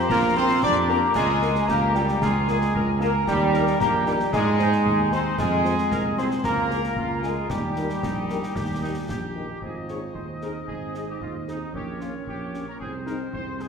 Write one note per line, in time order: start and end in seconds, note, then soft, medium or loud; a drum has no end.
0.09 0.54 A#1 medium
0.09 0.38 A#3 medium
0.09 0.23 A#3 loud
0.09 0.59 F4 loud
0.09 0.35 A#4 loud
0.09 0.34 A#5 loud
0.09 concert bass drum medium
0.09 snare medium
0.36 0.63 C4 medium
0.36 0.62 C4 loud
0.36 0.46 F4 medium
0.36 0.46 A#4 medium
0.36 0.61 C5 loud
0.36 0.61 C6 medium
0.36 0.63 C6 loud
0.63 1.02 F2 medium
0.63 0.75 D4 loud
0.63 0.90 D4 loud
0.63 1.16 G4 medium
0.63 0.75 D5 loud
0.63 0.89 D6 loud
0.63 0.88 D6 loud
0.63 concert bass drum medium
0.63 snare medium
0.88 1.01 A#3 medium
0.88 1.16 A#3 loud
0.88 0.99 F4 medium
0.88 1.01 A#4 medium
0.88 0.99 A#4 medium
0.88 1.13 A#5 loud
0.88 1.14 A#5 loud
1.15 1.60 C#2 medium
1.15 1.48 G#3 medium
1.15 1.65 G#3 loud
1.15 1.53 F4 medium
1.15 1.64 G#4 loud
1.15 1.68 G#5 loud
1.15 1.65 G#5 medium
1.15 concert bass drum medium
1.15 snare medium
1.15 crash medium
1.42 1.51 F4 medium
1.42 1.51 A#4 medium
1.42 snare medium
1.55 snare medium
1.68 2.13 C#2 medium
1.68 1.95 A#3 loud
1.68 2.18 G4 medium
1.68 1.95 A#4 loud
1.68 1.93 A#5 medium
1.68 1.95 A#5 loud
1.68 concert bass drum medium
1.68 snare medium
1.94 2.22 G3 medium
1.94 2.20 G3 loud
1.94 2.04 F4 medium
1.94 2.07 G4 medium
1.94 2.04 A#4 medium
1.94 2.20 G5 medium
1.94 2.22 G5 medium
1.94 snare medium
2.08 snare medium
2.21 2.65 C#2 medium
2.21 2.99 G#3 medium
2.21 3.01 G#3 loud
2.21 2.46 F4 medium
2.21 2.97 G#4 medium
2.21 2.97 G#5 medium
2.21 3.01 G#5 medium
2.21 concert bass drum medium
2.21 snare medium
2.47 2.57 F4 medium
2.47 2.73 G#4 medium
2.47 2.57 A#4 medium
2.47 snare medium
2.62 snare medium
2.74 3.18 C#2 medium
2.74 2.86 A#4 medium
2.74 concert bass drum medium
3.00 3.12 A#3 medium
3.00 3.13 A#3 loud
3.00 3.10 F4 medium
3.00 3.12 G#4 medium
3.00 3.10 A#4 medium
3.00 3.27 A#4 medium
3.00 3.27 A#5 medium
3.00 3.26 A#5 medium
3.00 snare medium
3.27 3.71 D#2 medium
3.27 3.81 G3 medium
3.27 3.77 G3 loud
3.27 3.80 G4 medium
3.27 3.52 G4 medium
3.27 3.77 G5 medium
3.27 3.77 G5 loud
3.27 concert bass drum medium
3.27 snare medium
3.53 3.63 D#4 medium
3.53 3.78 A#4 medium
3.53 3.63 A#4 medium
3.53 snare medium
3.67 snare medium
3.79 4.24 A#1 medium
3.79 4.04 A#3 loud
3.79 4.05 A#3 medium
3.79 4.30 G4 medium
3.79 3.92 A#4 medium
3.79 4.04 A#5 medium
3.79 4.05 A#5 medium
3.79 concert bass drum medium
3.79 snare medium
4.06 4.31 G3 medium
4.06 4.18 G3 loud
4.06 4.16 D#4 medium
4.06 4.18 G4 medium
4.06 4.16 A#4 medium
4.06 4.31 G5 medium
4.06 4.32 G5 medium
4.06 snare medium
4.20 snare medium
4.32 4.77 G#2 medium
4.32 5.08 G#3 loud
4.32 5.14 G#3 loud
4.32 4.60 F4 medium
4.32 5.08 G#4 loud
4.32 5.08 G#5 loud
4.32 5.09 G#5 medium
4.32 concert bass drum medium
4.32 snare medium
4.59 4.69 D#4 medium
4.59 5.35 D#4 medium
4.59 4.69 G#4 medium
4.59 4.69 C5 medium
4.59 snare medium
4.72 snare medium
4.85 5.30 D#2 medium
4.85 concert bass drum medium
5.12 5.38 C4 medium
5.12 5.39 C4 loud
5.12 5.22 D#4 medium
5.12 5.22 G#4 medium
5.12 5.37 C5 medium
5.12 5.22 C5 medium
5.12 5.39 C6 medium
5.12 5.37 C6 medium
5.12 snare medium
5.38 5.82 F2 medium
5.38 6.14 G#3 loud
5.38 6.14 G#3 medium
5.38 5.51 F4 medium
5.38 6.14 G#4 medium
5.38 6.14 G#5 medium
5.38 concert bass drum medium
5.38 snare medium
5.38 crash soft
5.65 5.74 F4 medium
5.65 5.74 G#4 medium
5.65 5.77 G#4 medium
5.65 5.74 C5 medium
5.65 snare medium
5.78 snare medium
5.91 6.36 C2 medium
5.91 6.03 A#4 medium
5.91 concert bass drum medium
5.91 snare medium
6.18 6.30 C4 medium
6.18 6.43 C4 medium
6.18 6.27 F4 medium
6.18 6.30 G#4 medium
6.18 6.28 G#4 medium
6.18 6.28 C5 medium
6.18 6.45 C5 medium
6.18 6.24 C6 medium
6.18 6.43 C6 medium
6.18 snare medium
6.31 snare medium
6.44 6.88 C#2 medium
6.44 7.20 A#3 loud
6.44 7.20 A#3 medium
6.44 6.94 A#4 medium
6.44 7.20 A#4 medium
6.44 7.20 A#5 medium
6.44 concert bass drum medium
6.44 snare medium
6.71 6.80 F4 medium
6.71 6.80 G#4 medium
6.71 6.80 A#4 medium
6.71 snare medium
6.84 snare medium
6.96 7.41 C#2 medium
6.96 7.46 F4 medium
6.96 concert bass drum medium
7.23 7.50 G#3 medium
7.23 7.48 G#3 medium
7.23 7.33 F4 medium
7.23 7.33 G#4 medium
7.23 7.50 G#4 medium
7.23 7.33 A#4 medium
7.23 7.50 G#5 medium
7.23 7.48 G#5 medium
7.23 snare medium
7.49 7.94 D#2 medium
7.49 9.31 G3 medium
7.49 9.32 G3 medium
7.49 7.98 G4 medium
7.49 9.35 G4 medium
7.49 9.31 G5 medium
7.49 9.32 G5 medium
7.49 concert bass drum medium
7.49 snare medium
7.76 7.86 D#4 medium
7.76 7.86 G4 medium
7.76 7.87 A#4 medium
7.76 snare medium
7.90 snare medium
8.02 8.42 A#1 medium
8.02 8.52 D#4 medium
8.02 concert bass drum medium
8.02 snare medium
8.29 8.39 D#4 medium
8.29 8.39 G4 medium
8.29 8.39 A#4 medium
8.29 snare medium
8.43 snare medium
8.55 9.00 D#2 medium
8.55 8.82 G4 medium
8.55 concert bass drum medium
8.55 snare medium
8.82 8.94 D#4 medium
8.82 8.93 D#4 medium
8.82 8.93 G4 medium
8.82 8.93 A#4 medium
9.09 9.53 A#1 medium
9.09 9.58 G4 medium
9.09 concert bass drum medium
9.09 snare medium
9.36 9.45 D#4 medium
9.36 9.46 G4 medium
9.36 9.45 A#4 medium
9.61 10.06 G#1 soft
9.61 10.16 F4 soft
9.61 9.74 G#4 medium
9.61 11.70 C5 soft
9.61 11.70 D#5 soft
9.61 concert bass drum medium
9.88 9.98 C4 soft
9.88 9.98 D#4 soft
9.88 9.98 G#4 soft
9.88 10.01 C#5 medium
9.88 snare soft
10.14 10.59 D#2 soft
10.14 11.71 D#4 soft
10.14 10.26 C5 soft
10.14 concert bass drum medium
10.41 10.51 C4 soft
10.41 10.51 D#4 soft
10.41 10.51 G#4 soft
10.41 10.54 A#4 medium
10.41 snare soft
10.67 11.12 G#1 soft
10.67 11.05 G#4 medium
10.67 concert bass drum medium
10.95 11.04 C4 soft
10.95 11.04 D#4 soft
10.95 11.04 G#4 soft
10.95 snare soft
11.08 11.20 G4 medium
11.21 11.65 D#2 soft
11.21 11.33 F4 medium
11.21 concert bass drum medium
11.48 11.57 C4 soft
11.48 11.57 D#4 soft
11.48 11.72 D#4 medium
11.48 11.57 G#4 soft
11.48 snare soft
11.72 12.18 A#1 medium
11.72 12.75 C#4 medium
11.72 11.99 G4 medium
11.72 12.76 A#4 soft
11.72 12.76 C#5 medium
11.72 concert bass drum medium
12.00 12.10 A#3 soft
12.00 12.10 C#4 soft
12.00 12.13 F4 medium
12.00 snare soft
12.27 12.71 A#1 medium
12.27 12.65 G4 medium
12.27 concert bass drum medium
12.53 12.63 A#3 soft
12.53 12.63 C#4 soft
12.53 snare soft
12.68 12.80 A#4 medium
12.79 13.24 C2 medium
12.79 13.68 C4 medium
12.79 12.92 G#4 medium
12.79 13.68 G#4 medium
12.79 13.68 C5 medium
12.79 concert bass drum medium
13.06 13.16 G#3 soft
13.06 13.16 C4 soft
13.06 13.16 D#4 soft
13.06 13.19 A#4 medium
13.06 snare soft
13.32 13.68 C2 medium
13.32 13.58 C5 medium
13.32 concert bass drum medium
13.60 13.68 G#3 soft
13.60 13.68 C4 soft
13.60 13.68 D#4 soft
13.60 13.68 G#4 medium
13.60 snare soft